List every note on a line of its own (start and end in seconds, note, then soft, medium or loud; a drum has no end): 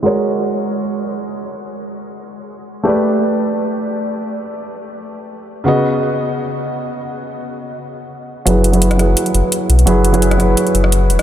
0.03 2.82 G#3 medium
0.03 2.83 F#4 medium
0.03 2.84 A#4 medium
0.03 2.84 C#5 medium
2.83 5.63 A3 medium
2.83 5.64 G4 medium
2.83 5.64 B4 medium
2.83 5.65 D5 medium
5.64 8.44 C#3 medium
5.64 8.44 B3 medium
5.64 8.45 F#4 medium
5.64 8.46 D#5 medium
8.46 9.15 F#1 medium
8.46 8.71 F#3 medium
8.46 8.71 E4 medium
8.46 8.71 G#4 medium
8.46 8.72 B4 medium
8.46 closed hi-hat medium
8.64 closed hi-hat medium
8.72 8.96 F#3 medium
8.72 8.97 E4 medium
8.72 8.97 G#4 medium
8.72 8.98 B4 medium
8.72 closed hi-hat soft
8.82 closed hi-hat medium
8.91 cross-stick medium
8.91 closed hi-hat soft
8.97 9.84 F#3 medium
8.97 9.85 E4 medium
8.97 9.85 G#4 medium
8.97 9.86 B4 medium
8.97 cross-stick soft
8.97 closed hi-hat medium
9.17 closed hi-hat medium
9.26 closed hi-hat soft
9.34 9.43 F#1 medium
9.34 closed hi-hat medium
9.52 closed hi-hat medium
9.69 9.85 B1 medium
9.69 closed hi-hat medium
9.79 closed hi-hat soft
9.86 10.56 F#1 loud
9.86 10.11 F#3 medium
9.86 10.11 E4 medium
9.86 10.12 G#4 medium
9.86 10.12 B4 medium
9.86 closed hi-hat medium
10.05 closed hi-hat medium
10.13 10.36 F#3 medium
10.13 10.37 E4 medium
10.13 10.38 G#4 medium
10.13 10.38 B4 medium
10.13 closed hi-hat soft
10.22 closed hi-hat medium
10.31 cross-stick medium
10.31 closed hi-hat soft
10.38 11.23 F#3 medium
10.38 11.23 E4 medium
10.38 11.23 G#4 medium
10.38 11.23 B4 medium
10.38 cross-stick soft
10.38 closed hi-hat medium
10.57 closed hi-hat medium
10.67 closed hi-hat soft
10.74 11.11 F#1 medium
10.74 closed hi-hat medium
10.84 cross-stick soft
10.92 closed hi-hat medium
11.10 11.18 E1 medium
11.10 closed hi-hat medium
11.19 cross-stick medium
11.19 closed hi-hat soft